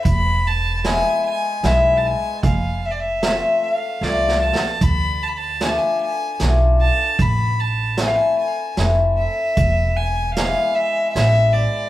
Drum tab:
HH |x--x--x--|x--x-----|x--x--x--|x--x--x--|
SD |---o--o--|---o--ooo|---o--o--|---o--o--|
BD |o--------|o--------|o--------|o--------|

HH |x--x--x--|
SD |---o--o--|
BD |o--------|